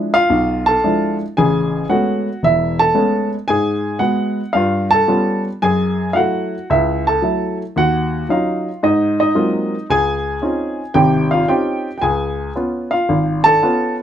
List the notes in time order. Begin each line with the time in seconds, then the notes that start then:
Already playing: F3 G#3 D4 E4
0.14 F4 F5
0.30 B1
0.66 A4 A5
0.84 F3 G#3 D4 E4
1.37 A1 C#3 G#4 G#5
1.89 G#3 A3 B3 C#4 F#4 F#5
2.43 E1 E4 E5
2.79 A4 A5
2.94 G#3 A3 B3 C#4
3.48 G#2 G#4 G#5
3.99 G#3 B3 F#4 F#5
4.53 G2 F4 F5
4.91 A4 A5
5.08 G3 B3 C#4 F4
5.62 F#2 G#4 G#5
6.13 F#3 A3 E4 F5 F#5
6.19 F#4
6.70 C#2 E4 E5
7.07 A4 A5
7.22 F#3 A3 E4
7.76 D#2 F#4 F#5
8.29 F#3 C#4 D#4 F4 F5
8.83 G#2 D#4 D#5
9.20 D#4 D#5
9.35 F#3 G#3 A#3 C4 F4
9.90 C#2 G#4 G#5
10.42 C4 C#4 D#4 F4
10.94 G#1 C3 G4 G5
11.31 F4 F5
11.48 C4 C#4 D#4 F4 G4 G5
11.98 G5 G#5
12.02 C#2 G#4
12.56 B3 C#4 F4
12.91 F4 F5
13.09 G#1
13.44 A4 A5
13.63 B3 C#4 F4